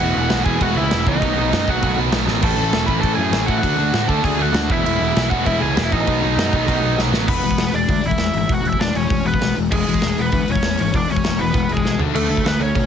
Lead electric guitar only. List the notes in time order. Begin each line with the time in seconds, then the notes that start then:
0.00 F#4 F#5
0.45 G#4 G#5
0.62 F#4 F#5
0.77 E4 E5
1.07 D#4 D#5
1.69 F#4 F#5
2.44 A4 A5
2.86 B4 B5
3.01 A4 A5
3.15 G#4 G#5
3.46 F#4 F#5
3.59 F#4 F#5
4.08 A4 A5
4.24 G#4 G#5
4.42 F#4 F#5
4.72 E4 E5
4.85 E4 E5
5.30 F#4 F#5
5.46 E4 E5
5.60 G#4 G#5
5.83 E4 E5
5.92 D#4 D#5
7.28 B3 B4
7.74 D4 D5
8.05 E4 E5
8.37 E4 E5
8.52 F#4 F#5
8.67 E4 E5
8.79 D4 D5
8.96 C#4 C#5
9.26 B3 B4
9.71 G#3 G#4
10.19 B3 B4
10.50 C#4 C#5
10.80 C#4 C#5
10.96 D4 D5
11.09 C#4 C#5
11.39 B3 B4
11.71 G#3 G#4
12.15 A3 A4
12.47 B3 B4
12.60 C#4 C#5